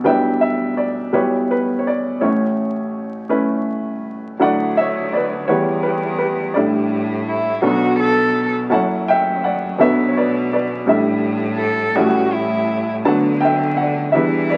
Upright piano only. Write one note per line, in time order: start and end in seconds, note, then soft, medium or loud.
0.04 1.09 B1 medium
0.04 1.09 B2 soft
0.04 0.69 G3 medium
0.04 0.69 D4 medium
0.04 0.70 E4 medium
0.04 0.70 B4 medium
0.04 0.39 E5 medium
0.04 0.39 G5 medium
0.41 0.74 E5 medium
0.77 1.14 D5 medium
1.13 2.17 B1 soft
1.13 2.17 B2 soft
1.13 1.78 G3 medium
1.13 1.78 B3 soft
1.13 1.78 E4 soft
1.13 2.18 G4 medium
1.13 1.49 B4 medium
1.13 1.51 C#5 medium
1.51 1.80 B4 medium
1.79 1.86 C#5 medium
1.87 2.23 D5 medium
2.20 4.36 A1 soft
2.20 4.35 A2 soft
2.20 2.86 A3 medium
2.20 2.86 C#4 medium
2.20 2.24 E4 soft
2.20 2.23 C#5 medium
2.25 3.28 E4 soft
2.25 3.65 C#5 medium
3.29 3.96 A3 medium
3.29 3.96 C#4 medium
3.29 3.96 E4 medium
3.29 3.96 B4 medium
4.39 5.45 D2 soft
4.39 5.44 D3 soft
4.39 5.05 F#3 medium
4.39 5.05 D4 medium
4.39 5.05 E4 medium
4.39 5.06 A4 medium
4.39 4.78 F#5 medium
4.44 4.76 D5 medium
4.77 5.12 C#5 medium
4.77 5.10 E5 medium
5.13 5.48 B4 medium
5.13 5.50 D5 medium
5.48 6.52 E2 medium
5.48 6.52 E3 soft
5.48 6.13 G3 medium
5.48 6.14 E4 soft
5.48 5.84 G4 medium
5.48 5.81 B4 medium
5.48 5.82 C#5 medium
5.48 6.13 F#5 soft
5.83 6.17 B4 medium
5.87 6.19 G4 medium
6.19 6.55 G4 soft
6.19 6.56 B4 medium
6.54 7.60 A1 soft
6.54 7.60 A2 soft
6.54 7.20 G3 medium
6.54 7.21 D4 medium
6.54 7.21 E4 medium
6.54 7.21 A4 medium
6.54 7.59 D5 medium
7.62 8.67 B1 medium
7.62 8.67 B2 medium
7.62 8.28 F#3 medium
7.62 8.28 B3 medium
7.62 8.28 D4 medium
7.62 8.28 A4 medium
8.70 9.74 F#1 soft
8.70 9.74 F#2 soft
8.70 9.35 F#3 medium
8.70 9.35 C#4 medium
8.70 9.36 E4 medium
8.70 9.36 A4 medium
8.70 9.09 A5 medium
8.74 9.06 F#5 medium
9.08 9.42 E5 medium
9.08 9.45 G5 medium
9.44 9.78 D5 medium
9.44 9.81 F#5 medium
9.78 10.83 B1 medium
9.78 10.83 B2 medium
9.78 10.44 F#3 medium
9.78 10.43 B3 medium
9.78 10.44 D4 medium
9.78 10.44 A4 medium
9.78 10.08 B4 medium
9.78 10.10 E5 medium
10.08 10.15 C#5 medium
10.17 10.50 B4 medium
10.17 10.52 D5 medium
10.53 10.86 B4 soft
10.53 10.89 D5 medium
10.86 11.91 A1 soft
10.86 11.92 A2 medium
10.86 11.52 G3 medium
10.86 11.52 D4 medium
10.86 11.52 E4 medium
10.86 10.90 A4 medium
10.86 11.93 E5 medium
10.91 11.94 A4 medium
11.96 13.01 A1 medium
11.96 13.01 A2 medium
11.96 12.61 G3 medium
11.96 12.61 C#4 medium
11.96 12.62 E4 medium
11.96 12.62 A4 medium
13.05 14.11 D2 medium
13.05 14.11 D3 medium
13.05 13.71 F#3 medium
13.05 13.71 B3 medium
13.05 13.71 D4 medium
13.05 13.71 A4 medium
13.05 13.40 F#5 medium
13.05 13.43 A5 medium
13.41 13.79 G5 medium
13.45 13.77 E5 medium
13.77 14.15 F#5 medium
13.81 14.14 D5 soft
14.12 14.57 E2 medium
14.12 14.57 E3 medium
14.12 14.57 G3 medium
14.12 14.57 D4 medium
14.12 14.57 E4 soft
14.12 14.52 B4 medium
14.12 14.47 E5 medium
14.50 14.57 B4 soft
14.50 14.57 D5 medium